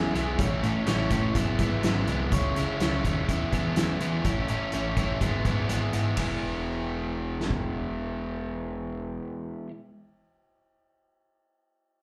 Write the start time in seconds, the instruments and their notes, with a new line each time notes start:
Already playing: fingered electric bass E2, overdriven electric guitar E3 G#3 B3 E4, clean electric guitar F#3 G#4
0.14 fingered electric bass B1, overdriven electric guitar E3 G#3 B3 E4, clean electric guitar F#3 G#4, closed hi-hat
0.38 fingered electric bass A1, overdriven electric guitar A2 E3 A3 C#4 E4, kick, closed hi-hat
0.62 overdriven electric guitar A2 E3 A3 C#4 E4, fingered electric bass A2, closed hi-hat
0.86 fingered electric bass A1, overdriven electric guitar A2 E3 A3 C#4 E4, snare, closed hi-hat
1.10 fingered electric bass A2, overdriven electric guitar A2 E3 A3 C#4 E4, kick, closed hi-hat
1.35 fingered electric bass G#1, overdriven electric guitar G#2 E3 G#3 B3 E4, clean electric guitar F#3, kick, closed hi-hat
1.59 overdriven electric guitar G#2 E3 G#3 B3 E4, fingered electric bass G#2, clean electric guitar F#3, kick, closed hi-hat
1.83 fingered electric bass G#1, overdriven electric guitar G#2 E3 G#3 B3 E4, clean electric guitar F#3, snare, closed hi-hat
2.07 fingered electric bass C2, overdriven electric guitar G#2 E3 G#3 B3 E4, clean electric guitar F#3, closed hi-hat
2.32 fingered electric bass C#2, overdriven electric guitar C#3 G#3 C#4 E4, kick, closed hi-hat
2.56 fingered electric bass C#3, overdriven electric guitar C#3 G#3 C#4 E4, closed hi-hat
2.80 fingered electric bass C#2, overdriven electric guitar C#3 G#3 C#4 E4, snare, closed hi-hat
3.04 fingered electric bass D#2, overdriven electric guitar C#3 G#3 C#4 E4, kick, closed hi-hat
3.28 fingered electric bass E2, overdriven electric guitar E3 G#3 B3 E4, kick, closed hi-hat
3.52 fingered electric bass E3, overdriven electric guitar E3 G#3 B3 E4, kick, closed hi-hat
3.76 fingered electric bass E2, overdriven electric guitar E3 G#3 B3 E4, snare, closed hi-hat
4.00 overdriven electric guitar E3 G#3 B3 E4, fingered electric bass E3, closed hi-hat
4.24 fingered electric bass A1, overdriven electric guitar A2 E3 A3 C#4 E4, kick, closed hi-hat
4.48 overdriven electric guitar A2 E3 A3 C#4 E4, fingered electric bass A2, closed hi-hat
4.72 fingered electric bass A1, overdriven electric guitar A2 E3 A3 C#4 E4, closed hi-hat
4.97 fingered electric bass A1, overdriven electric guitar A2 E3 A3 C#4 E4, kick, closed hi-hat
5.21 fingered electric bass G#1, overdriven electric guitar G#2 E3 G#3 B3 E4, kick, closed hi-hat
5.45 fingered electric bass G#2, overdriven electric guitar G#2 E3 G#3 B3 E4, kick, closed hi-hat
5.68 fingered electric bass G#1, overdriven electric guitar G#2 E3 G#3 B3 E4, closed hi-hat
5.93 fingered electric bass G#2, overdriven electric guitar G#2 E3 G#3 B3 E4, closed hi-hat
6.17 fingered electric bass E1, overdriven electric guitar E3 G#3 B3 E4, kick, ride
7.40 snare
7.50 kick